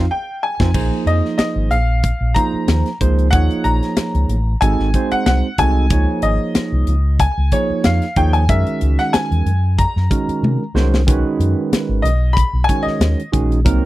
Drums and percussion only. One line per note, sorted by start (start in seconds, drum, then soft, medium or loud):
0.60 kick medium
0.60 snare medium
0.74 kick loud
0.74 crash medium
1.07 closed hi-hat medium
1.25 snare soft
1.39 snare loud
1.39 closed hi-hat medium
1.71 closed hi-hat medium
2.03 kick medium
2.03 closed hi-hat medium
2.36 kick medium
2.36 closed hi-hat medium
2.68 snare loud
2.68 closed hi-hat medium
2.86 snare soft
2.86 closed hi-hat soft
3.01 kick medium
3.01 closed hi-hat medium
3.19 closed hi-hat soft
3.32 kick loud
3.32 closed hi-hat medium
3.51 closed hi-hat soft
3.65 closed hi-hat medium
3.83 snare soft
3.83 closed hi-hat soft
3.97 snare loud
3.97 closed hi-hat medium
4.15 closed hi-hat soft
4.29 closed hi-hat medium
4.62 kick medium
4.62 closed hi-hat medium
4.80 snare soft
4.94 kick medium
4.94 closed hi-hat medium
5.11 closed hi-hat soft
5.26 snare loud
5.26 closed hi-hat medium
5.58 kick medium
5.58 closed hi-hat medium
5.90 kick loud
5.90 closed hi-hat medium
6.22 closed hi-hat medium
6.55 snare loud
6.55 closed hi-hat medium
6.87 closed hi-hat medium
7.19 kick medium
7.19 closed hi-hat medium
7.52 kick medium
7.52 closed hi-hat medium
7.84 snare loud
7.84 closed hi-hat medium
8.02 snare soft
8.02 closed hi-hat soft
8.16 kick medium
8.16 closed hi-hat medium
8.34 closed hi-hat soft
8.49 kick loud
8.49 closed hi-hat medium
8.67 closed hi-hat soft
8.81 closed hi-hat medium
8.99 snare soft
8.99 closed hi-hat soft
9.14 snare loud
9.14 closed hi-hat medium
9.32 closed hi-hat soft
9.46 closed hi-hat medium
9.79 kick medium
9.79 closed hi-hat medium
9.97 snare soft
10.11 kick medium
10.11 closed hi-hat medium
10.29 closed hi-hat soft
10.44 high tom medium
10.76 snare medium
10.94 snare medium
11.08 kick loud
11.08 closed hi-hat medium
11.41 closed hi-hat medium
11.73 snare loud
11.73 closed hi-hat medium
12.05 closed hi-hat medium
12.37 kick medium
12.37 closed hi-hat medium
12.69 kick medium
12.69 closed hi-hat medium
12.87 snare soft
13.01 snare loud
13.01 closed hi-hat medium
13.20 closed hi-hat soft
13.33 kick medium
13.33 closed hi-hat medium
13.52 closed hi-hat soft
13.66 kick loud
13.66 closed hi-hat medium